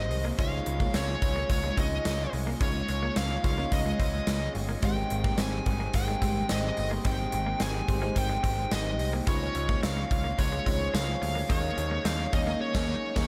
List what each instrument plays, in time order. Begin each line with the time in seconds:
Already playing: picked electric bass G#1, overdriven electric guitar G#2 D#3 G#3, fm electric piano G#3 C4 D#4 G4 B4 C5, lead electric guitar D#5
0.11 picked electric bass C2, muted clean electric guitar stroke, open hi-hat
0.25 clean electric guitar A#3
0.38 picked electric bass C#2, overdriven electric guitar C#3 G#3 C#4, fm electric piano G#3 C#4 D#4 F4 C#5, clean electric guitar C#4, lead electric guitar F5, kick, closed hi-hat
0.66 picked electric bass C#2, muted clean electric guitar stroke, closed hi-hat
0.80 fm electric piano G#3 C#4 D#4 F4 C#5, clean electric guitar A#3, kick
0.94 picked electric bass C#2, clean electric guitar C4, lead electric guitar C#5, snare, closed hi-hat, tambourine
1.08 muted clean electric guitar stroke
1.22 picked electric bass C#2, overdriven electric guitar G#3 C#4, kick, closed hi-hat
1.36 clean electric guitar A#3
1.49 picked electric bass C#2, overdriven electric guitar C#3 G#3 C#4, lead electric guitar C#5, muted clean electric guitar stroke, kick, closed hi-hat
1.64 clean electric guitar G#3
1.77 picked electric bass C#2, fm electric piano G#3 C#4 D#4 F4 C#5, overdriven electric guitar G#3 C#4, clean electric guitar C4, lead electric guitar D#5, kick, closed hi-hat
2.05 picked electric bass C#2, clean electric guitar G#3, snare, closed hi-hat, tambourine
2.33 picked electric bass C2, muted clean electric guitar stroke, open hi-hat
2.47 clean electric guitar A#3
2.60 picked electric bass C#2, overdriven electric guitar C#3 G#3 C#4, fm electric piano G#3 C#4 D#4 F4 C#5, clean electric guitar C#4, lead electric guitar C#5, kick, closed hi-hat
2.88 picked electric bass C#2, muted clean electric guitar stroke, closed hi-hat
3.03 clean electric guitar A#3
3.16 picked electric bass C#2, clean electric guitar C4, lead electric guitar F5, snare, closed hi-hat, tambourine
3.31 muted clean electric guitar stroke
3.44 picked electric bass C#2, fm electric piano G#3 C#4 D#4 F4 C#5, overdriven electric guitar G#3 C#4, lead electric guitar F5, kick, closed hi-hat
3.58 fm electric piano G#3 C#4 D#4 F4 C#5, clean electric guitar A#3
3.71 picked electric bass C#2, overdriven electric guitar C#3 G#3 C#4, lead electric guitar D#5, muted clean electric guitar stroke, kick, closed hi-hat
3.86 clean electric guitar G#3
3.99 picked electric bass C#2, overdriven electric guitar G#3 C#4, clean electric guitar C4, kick, closed hi-hat
4.27 picked electric bass C#2, clean electric guitar G#3, snare, closed hi-hat, tambourine
4.55 picked electric bass G1, muted clean electric guitar stroke, open hi-hat
4.69 clean electric guitar A#3
4.82 picked electric bass G#1, overdriven electric guitar G#2 D#3 G#3, fm electric piano G#3 C4 D#4 G4 C5, clean electric guitar G#3, lead electric guitar G5, kick, closed hi-hat
5.10 picked electric bass G#1, muted clean electric guitar stroke, closed hi-hat
5.24 fm electric piano G3 G#3 C4 D#4 A#4, clean electric guitar A#3, kick
5.38 picked electric bass G#1, clean electric guitar C4, lead electric guitar G#5, snare, closed hi-hat, tambourine
5.52 muted clean electric guitar stroke
5.65 picked electric bass G#1, overdriven electric guitar D#3 G#3, kick, closed hi-hat
5.80 clean electric guitar A#3
5.94 picked electric bass G#1, overdriven electric guitar G#2 D#3 G#3, lead electric guitar G5, muted clean electric guitar stroke, kick, closed hi-hat
6.08 clean electric guitar G#3
6.21 picked electric bass G#1, overdriven electric guitar D#3 G#3, fm electric piano G#3 C4 D#4 G4 C5, clean electric guitar C4, kick, closed hi-hat
6.49 picked electric bass G#1, clean electric guitar G#3, lead electric guitar D#5, snare, closed hi-hat, tambourine
6.77 picked electric bass G1, muted clean electric guitar stroke, open hi-hat
6.91 clean electric guitar A#3
7.04 picked electric bass G#1, overdriven electric guitar G#2 D#3, clean electric guitar G#3, fm electric piano G#3 C4 D#4 G4 C5, lead electric guitar G5, kick, closed hi-hat
7.08 overdriven electric guitar G#3
7.32 picked electric bass G#1, muted clean electric guitar stroke, closed hi-hat
7.46 clean electric guitar A#3
7.60 picked electric bass G#1, clean electric guitar C4, lead electric guitar G#5, snare, closed hi-hat, tambourine
7.74 muted clean electric guitar stroke
7.88 picked electric bass G#1, fm electric piano G#3 C4 D#4 G4 C5, kick, closed hi-hat
8.02 fm electric piano G#3 C4 D#4 G4 C5, clean electric guitar A#3
8.15 picked electric bass G#1, overdriven electric guitar G#2 D#3, lead electric guitar G5, muted clean electric guitar stroke, kick, closed hi-hat
8.19 overdriven electric guitar G#3
8.30 clean electric guitar G#3
8.43 picked electric bass G#1, clean electric guitar C4, kick, closed hi-hat
8.71 picked electric bass G#1, clean electric guitar G#3, lead electric guitar D#5, snare, closed hi-hat, tambourine
8.99 picked electric bass C2, muted clean electric guitar stroke, open hi-hat
9.13 clean electric guitar A#3
9.26 picked electric bass C#2, overdriven electric guitar C#3 G#3, fm electric piano G#3 C#4 D#4 F4 C#5, clean electric guitar C#4, lead electric guitar C#5, kick, closed hi-hat
9.31 overdriven electric guitar C#4
9.55 picked electric bass C#2, muted clean electric guitar stroke, closed hi-hat
9.69 fm electric piano G#3 C#4 D#4 F4 C#5, clean electric guitar A#3, kick
9.83 picked electric bass C#2, clean electric guitar C4, lead electric guitar F5, snare, closed hi-hat, tambourine
9.97 muted clean electric guitar stroke
10.11 picked electric bass C#2, lead electric guitar F5, kick, closed hi-hat
10.24 clean electric guitar A#3
10.38 picked electric bass C#2, overdriven electric guitar C#3 G#3 C#4, lead electric guitar C#5, muted clean electric guitar stroke, kick, closed hi-hat
10.52 clean electric guitar G#3
10.66 picked electric bass C#2, fm electric piano G#3 C#4 D#4 F4 C5, clean electric guitar C4, kick, closed hi-hat
10.74 fm electric piano C#5
10.94 picked electric bass C#2, clean electric guitar G#3, lead electric guitar F5, snare, closed hi-hat, tambourine
11.22 picked electric bass D2, lead electric guitar F5, muted clean electric guitar stroke, open hi-hat
11.35 clean electric guitar A#3
11.49 picked electric bass D#2, overdriven electric guitar D#3 A#3 D#4, fm electric piano A#3 C#4 D#4 G#4 C#5, clean electric guitar D#4, lead electric guitar C#5, kick, closed hi-hat
11.77 picked electric bass D#2, muted clean electric guitar stroke, closed hi-hat
11.91 clean electric guitar A#3
12.05 picked electric bass D#2, clean electric guitar C4, lead electric guitar F5, snare, closed hi-hat, tambourine
12.19 muted clean electric guitar stroke
12.32 picked electric bass D#2, fm electric piano A#3 C#4 D#4 G#4 C#5, overdriven electric guitar A#3 D#4, lead electric guitar D#5, kick, closed hi-hat
12.46 fm electric piano A#3 C#4 D#4 G#4 C#5, clean electric guitar A#3
12.61 lead electric guitar C#5
12.73 picked electric bass D#2, overdriven electric guitar D#3 A#3, fm electric piano A#3 C#4 D#4 G#4 C#5, kick, snare, crash
12.77 overdriven electric guitar D#4
13.15 picked electric bass D#2, overdriven electric guitar D#3 A#3, fm electric piano A#3 C#4 D#4 G#4 C#5, kick, snare, crash
13.19 overdriven electric guitar D#4